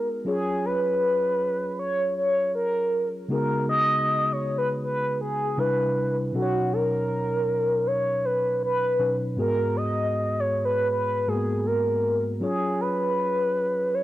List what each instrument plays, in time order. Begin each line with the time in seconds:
Already playing: tine electric piano G#3 B3 D#4 F#4 G#4
0.25 tine electric piano F#3 C#4 F4 G#4 C#5, soft synth lead G#4
0.65 soft synth lead B4
1.79 soft synth lead C#5
2.17 soft synth lead C#5
2.55 soft synth lead A#4
3.28 tine electric piano C#3 G#3 B3 D#4 F#4 G#4, soft synth lead A#4
3.69 soft synth lead D#5
4.33 soft synth lead C#5
4.58 soft synth lead B4
4.83 soft synth lead B4
5.21 soft synth lead G#4
5.57 tine electric piano C3 G3 D4 E4 B4, soft synth lead B4
6.32 tine electric piano B2 F#3 C#4 D#4 A4, soft synth lead F#4
6.42 tine electric piano C#5
6.73 soft synth lead A#4
7.87 soft synth lead C#5
8.25 soft synth lead B4
8.63 soft synth lead B4
8.99 tine electric piano B2 F#3 C#4 D#4 B4
9.36 tine electric piano G#2 G#3 B3 F#4 G#4, soft synth lead A#4
9.77 soft synth lead D#5
10.40 soft synth lead C#5
10.65 soft synth lead B4
10.91 soft synth lead B4
11.27 tine electric piano G#2 G#3 A#3 F#4 A#4, soft synth lead G#4
11.35 tine electric piano B3
11.66 soft synth lead A#4
12.40 tine electric piano F#3 C#4 F4 G#4 C#5, soft synth lead G#4
12.81 soft synth lead B4
13.94 soft synth lead C#5